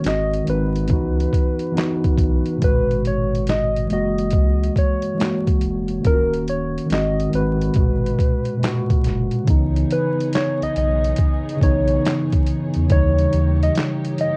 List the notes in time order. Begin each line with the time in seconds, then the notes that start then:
0.01 G#1 D#3 G#3, closed hi-hat
0.05 C4 F#4 D#5, snare, clap
0.33 closed hi-hat
0.44 G#1 D#3 G#3, closed hi-hat
0.49 C4 D#4 B4
0.76 closed hi-hat
0.86 C#2 E3 B3, kick, closed hi-hat
0.90 D#4 F#4
1.20 closed hi-hat
1.33 kick, closed hi-hat
1.59 closed hi-hat
1.72 E3 B3
1.76 D#4 F#4, snare, clap, closed hi-hat
2.04 kick, closed hi-hat
2.18 B1, kick, closed hi-hat
2.46 closed hi-hat
2.57 B2 G#3
2.61 G#1 A#2 F#4 B4, kick, closed hi-hat
2.91 closed hi-hat
3.05 C#5, closed hi-hat
3.35 closed hi-hat
3.47 D#5, snare, clap, closed hi-hat
3.76 closed hi-hat
3.87 E3 G#3, closed hi-hat
3.91 F#1 A#3 F#4 D#5
4.18 closed hi-hat
4.31 C#2, kick, closed hi-hat
4.63 closed hi-hat
4.76 C#5, kick, closed hi-hat
5.02 closed hi-hat
5.14 E3 G#3
5.19 A#3 F#4, snare, clap, closed hi-hat
5.47 kick, closed hi-hat
5.61 E1, closed hi-hat
5.88 closed hi-hat
6.00 D#3 A#3, closed hi-hat
6.05 D#1 C#4 F4 A#4, kick
6.14 F#4
6.33 closed hi-hat
6.48 C#5, closed hi-hat
6.78 closed hi-hat
6.86 D#3 G#3
6.90 G#1 C4 F#4 D#5, snare, clap, closed hi-hat
7.20 closed hi-hat
7.29 G#1 D#3 G#3, closed hi-hat
7.34 C4 F#4 B4
7.62 closed hi-hat
7.73 G#1 B2 G#3, kick, closed hi-hat
7.78 A#2 F#4
8.06 closed hi-hat
8.19 kick, closed hi-hat
8.45 closed hi-hat
8.57 B2 G#3
8.62 A#2 F#4, snare, clap, closed hi-hat
8.90 kick, closed hi-hat
9.04 F#1, snare, closed hi-hat
9.31 closed hi-hat
9.43 C#3 E3 B3 D#4 C#5
9.47 C#2 E3 B3 D#4 G#4, kick, closed hi-hat
9.76 closed hi-hat
9.91 B4, closed hi-hat
10.20 closed hi-hat
10.33 C#5, snare, clap, closed hi-hat
10.62 B1 D#5, closed hi-hat
10.76 B1 D#5, closed hi-hat
11.04 closed hi-hat
11.16 kick, closed hi-hat
11.49 closed hi-hat
11.57 C#3 E3
11.61 B1 B3 D#4 C#5, kick, closed hi-hat
11.87 closed hi-hat
12.05 snare, clap, closed hi-hat
12.32 kick, closed hi-hat
12.46 closed hi-hat
12.74 E2, closed hi-hat
12.87 D#2 C#3 E3 A#3 D#4 G4, kick, closed hi-hat
12.91 G3 D#4 C#5
13.18 closed hi-hat
13.33 D#2, closed hi-hat
13.63 D#5, closed hi-hat
13.75 snare, clap, closed hi-hat
14.05 closed hi-hat
14.18 D#5, closed hi-hat